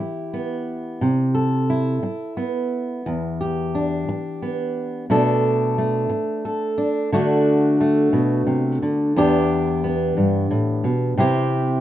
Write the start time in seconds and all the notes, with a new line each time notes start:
Already playing: B3 E4 G4
0.34 B3
1.01 C3
1.35 A4
1.70 E4
2.03 muted steel-string acoustic guitar stroke
2.37 B3
3.06 E2
3.41 G4
3.75 D4
4.09 muted steel-string acoustic guitar stroke
4.42 B3
5.10 B2 A3 D4 A4
5.78 A3
6.09 muted steel-string acoustic guitar stroke
6.45 A4
6.78 D4
7.12 D3 A3 D4 F#4
7.81 A3
8.13 B2
8.47 C3
8.82 D3
9.16 E2 B3 D4 G4
9.84 B3
10.17 G2
10.51 A2
10.84 B2
11.17 C3 C4 E4 G4